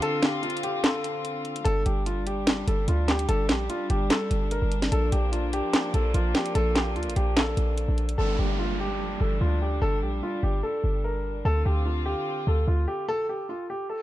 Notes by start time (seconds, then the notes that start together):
Already playing: D3 C4 F4
0.02 A4, closed hi-hat
0.23 G4, snare, clap, closed hi-hat
0.43 F4, closed hi-hat
0.50 closed hi-hat
0.57 closed hi-hat
0.63 G4, closed hi-hat
0.83 A4, snare, clap, closed hi-hat
1.04 closed hi-hat
1.25 closed hi-hat
1.45 closed hi-hat, open hi-hat
1.56 closed hi-hat
1.65 G1 G3 D4 A4, closed hi-hat
1.86 G1 G4, closed hi-hat
2.06 F4, closed hi-hat
2.27 G4, closed hi-hat
2.47 snare, clap, closed hi-hat
2.67 G1 A4, closed hi-hat
2.88 D2 F4, closed hi-hat
3.08 G4, snare, clap, closed hi-hat
3.19 closed hi-hat
3.29 G1 A4, closed hi-hat
3.49 A#1 G4, snare, clap, closed hi-hat
3.69 F4, closed hi-hat
3.90 G1 G4, closed hi-hat
4.10 A4, snare, clap, closed hi-hat
4.31 G1, closed hi-hat
4.51 A#4, closed hi-hat
4.62 G1
4.72 closed hi-hat
4.82 snare, closed hi-hat
4.92 A#1 F3 A#3 A4, closed hi-hat
5.12 A#1 G4, closed hi-hat
5.32 F4, closed hi-hat
5.53 G4, closed hi-hat
5.73 snare, clap, closed hi-hat
5.94 A#1 A4, closed hi-hat
6.14 A#1 F4, closed hi-hat
6.35 G4, snare, clap, closed hi-hat
6.46 closed hi-hat
6.55 A#1 A4, closed hi-hat
6.75 G4, snare, clap, closed hi-hat
6.96 D2 F4, closed hi-hat
7.03 A#1, closed hi-hat
7.10 closed hi-hat
7.16 A#1 G4, closed hi-hat
7.37 A4, snare, clap, closed hi-hat
7.57 A#1, closed hi-hat
7.78 closed hi-hat
7.88 A#1
7.98 closed hi-hat, open hi-hat
8.09 closed hi-hat
8.18 G1 G3 D4 A4, downlifter
8.39 G1 G4
8.59 F4
8.80 G4
9.20 G1 A4
9.41 D2 F4
9.62 G4
9.82 G1 A4
10.02 A#1 G4
10.23 F4
10.43 G1 G4
10.63 A4
10.84 G1
11.04 A#4
11.45 D2 D3 C4 F4 A4
11.65 D2 G4
11.85 F4
12.06 G4
12.47 D2 A4
12.67 D2 F4
12.88 G4
13.09 A4
13.29 G4
13.49 F4
13.70 G4
13.90 A4, reverse cymbal